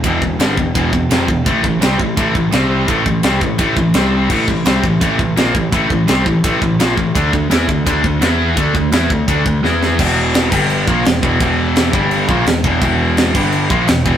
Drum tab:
CC |--------|--------|--------|x-------|
RD |b-b-b-b-|b-b-b-b-|b-b-b-b-|--b-b-b-|
SD |--o---o-|--o---o-|--o---o-|--o---o-|
BD |oo-ooo-o|oo-ooo--|oo-ooo--|oo-ooo-o|

CC |--------|--------|--------|x-xxx-x-|
RD |b-b-b-b-|b-b-b-b-|b-b-b---|--------|
SD |--o---o-|--o---o-|--o---oo|--o---o-|
BD |oo-ooo-o|oo-ooo--|oo-ooo--|o--o-o-o|

CC |x-x-x-x-|x-xxx-x-|
RD |--------|--------|
SD |--o---o-|--o---o-|
BD |o--o-o-o|o--o-o-o|